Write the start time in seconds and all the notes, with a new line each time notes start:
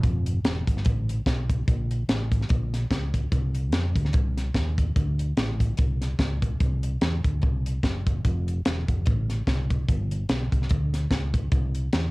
0.03 F1, kick, closed hi-hat
0.26 closed hi-hat
0.44 E1, snare, closed hi-hat
0.67 G1, kick, closed hi-hat
0.77 snare
0.85 A1, kick, closed hi-hat
1.09 closed hi-hat
1.26 B1, kick, snare, closed hi-hat
1.50 kick, closed hi-hat
1.68 A#1, kick, closed hi-hat
1.91 closed hi-hat
2.08 A1, snare, closed hi-hat
2.32 kick, closed hi-hat
2.41 snare
2.49 A#1, kick, closed hi-hat
2.74 snare, closed hi-hat
2.90 C#2, kick, snare, closed hi-hat
3.14 kick, closed hi-hat
3.32 C2, kick, closed hi-hat
3.55 closed hi-hat
3.72 F2, snare, closed hi-hat
3.96 D2, kick, closed hi-hat
4.05 snare
4.13 C2, kick, closed hi-hat
4.37 snare, closed hi-hat
4.54 D#2, kick, snare, closed hi-hat
4.78 kick, closed hi-hat
4.96 D2, kick, closed hi-hat
5.19 closed hi-hat
5.37 A1, snare, closed hi-hat
5.60 kick, closed hi-hat
5.77 C2, kick, closed hi-hat
6.01 snare, closed hi-hat
6.19 C#2, kick, snare, closed hi-hat
6.42 kick, closed hi-hat
6.60 C2, kick, closed hi-hat
6.83 closed hi-hat
7.01 E2, snare, closed hi-hat
7.25 D2, kick, closed hi-hat
7.42 C2, kick, closed hi-hat
7.66 closed hi-hat
7.83 F#1, kick, snare, closed hi-hat
8.07 kick, closed hi-hat
8.25 F1, kick, closed hi-hat
8.48 closed hi-hat
8.65 E1, snare, closed hi-hat
8.88 F1, kick, closed hi-hat
9.06 A1, kick, closed hi-hat
9.29 snare, closed hi-hat
9.47 C2, kick, snare, closed hi-hat
9.70 kick, closed hi-hat
9.88 G1, kick, closed hi-hat
10.11 closed hi-hat
10.29 B1, snare, closed hi-hat
10.52 C2, kick, closed hi-hat
10.62 snare
10.69 D2, kick, closed hi-hat
10.94 snare, closed hi-hat
11.10 C#2, kick, snare, closed hi-hat
11.34 kick, closed hi-hat
11.52 C2, kick, closed hi-hat
11.75 closed hi-hat
11.93 E2, snare, closed hi-hat